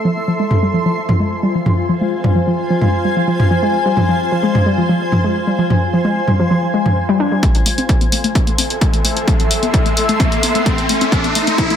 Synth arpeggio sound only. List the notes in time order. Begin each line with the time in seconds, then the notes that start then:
0.05 F3
0.28 F3
0.40 G#3
0.63 G3
0.74 F3
0.86 F3
1.09 F3
1.20 G#3
1.43 G3
1.55 F3
1.66 F3
1.89 F3
2.01 G#3
2.24 G3
2.35 F3
2.47 F3
2.70 F3
2.81 G#3
3.05 G3
3.17 F3
3.28 F3
3.51 F3
3.63 G#3
3.86 G3
3.97 F3
4.09 F3
4.32 F3
4.43 G#3
4.66 G3
4.78 F3
4.89 F3
5.12 F3
5.24 G#3
5.47 G3
5.58 F3
5.70 F3
5.93 F3
6.05 G#3
6.28 G3
6.40 F3
6.51 F3
6.74 G#3
6.86 F3
7.09 G3
7.20 D4
7.32 G3
7.43 A3
7.66 A3
7.78 C4
8.01 B3
8.12 A3
8.24 A3
8.47 A3
8.58 C4
8.81 B3
8.93 A3
9.05 A3
9.28 A3
9.40 C4
9.63 B3
9.74 A3
9.86 A3
10.09 A3
10.20 C4
10.43 B3
10.55 A3
10.66 A3
10.89 A3
11.01 C4
11.24 B3
11.35 A3
11.47 A3
11.70 A3